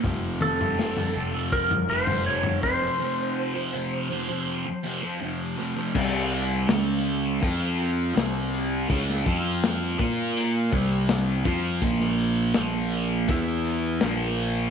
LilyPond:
<<
  \new Staff \with { instrumentName = "Electric slide guitar" } { \time 4/4 \tempo 4 = 82 r8 a'4. bes'8 c''8 des''8 c''8~ | c''2. r4 | r1 | r1 |
r1 | }
  \new Staff \with { instrumentName = "Distorted electric guitar" } { \clef bass \time 4/4 <f, c f>8. <c f>16 <f, c f>8 <f, c f>16 <c f>8. <f, c f>8 <f, c f>8 <f, c f>16 <c f>16 | <f, c f>8. <c f>16 <f, c f>8 <f, c f>16 <c f>8. <f, c f>8 <f, c f>8 <f, c f>16 <c f>16 | <c g c'>4 <des aes des'>4 <f c' f'>4 <c g c'>4 | <des aes des'>8 <f c' f'>4 <bes f' bes'>4 <c g c'>4 <f c' f'>8 |
<bes, f bes>4 <bes, f bes>4 <e b e'>4 <bes, f bes>4 | }
  \new Staff \with { instrumentName = "Picked electric bass" } { \clef bass \time 4/4 f,,4. f,,4 f,,4. | r1 | c,4 des,4 f,4 c,4 | des,8 f,4 bes,4 c,4 f,8 |
bes,,4 bes,,4 e,4 bes,,4 | }
  \new DrumStaff \with { instrumentName = "Drums" } \drummode { \time 4/4 <bd tomfh>8 toml16 tomfh16 sn16 tomfh8. bd16 tomfh8 tomfh16 r16 tomfh16 bd8 | r4 r4 r4 r4 | <cymc bd>8 hho8 <hho sn>8 hho8 <hho bd>8 hho8 <hho sn>8 hho8 | <hho bd>16 sn16 <hho bd>8 <hho sn>8 <hho bd>8 hho8 <hho bd>8 <hho sn>8 <hho bd>8 |
<hho bd>16 sn16 hho8 <hho sn>8 hho8 <hho bd>8 hho8 <hho sn>8 hho8 | }
>>